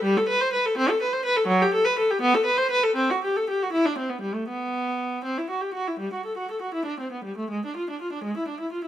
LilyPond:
\new Staff \with { instrumentName = "Viola" } { \time 6/8 \key e \minor \tempo 4. = 81 g16 a'16 b'16 c''16 b'16 a'16 c'16 a'16 b'16 c''16 b'16 a'16 | fis16 g'16 a'16 b'16 a'16 g'16 b16 a'16 b'16 c''16 b'16 a'16 | c'16 fis'16 g'16 a'16 g'16 fis'16 e'16 d'16 c'16 b16 g16 a16 | b4. c'16 e'16 fis'16 g'16 fis'16 e'16 |
g16 fis'16 a'16 fis'16 a'16 fis'16 e'16 d'16 c'16 b16 g16 a16 | gis16 d'16 f'16 d'16 f'16 d'16 gis16 e'16 d'16 e'16 f'16 e'16 | }